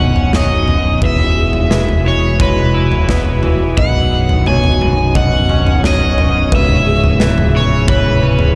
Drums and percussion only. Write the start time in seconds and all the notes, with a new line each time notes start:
0.16 floor tom
0.33 snare, floor tom
0.68 floor tom
1.02 kick, floor tom
1.19 floor tom
1.53 floor tom
1.71 snare, mid tom
1.88 floor tom
2.40 kick, floor tom, mid tom
2.92 floor tom
3.09 kick, snare, floor tom
3.43 floor tom
3.77 kick, floor tom
4.29 floor tom
4.46 mid tom
4.64 floor tom
4.81 mid tom
5.15 kick, floor tom, mid tom
5.49 floor tom
5.67 floor tom
5.84 snare, floor tom
6.18 floor tom
6.52 kick, floor tom
6.69 floor tom
7.04 floor tom
7.20 snare, mid tom
7.38 floor tom
7.88 kick, floor tom, mid tom
8.39 floor tom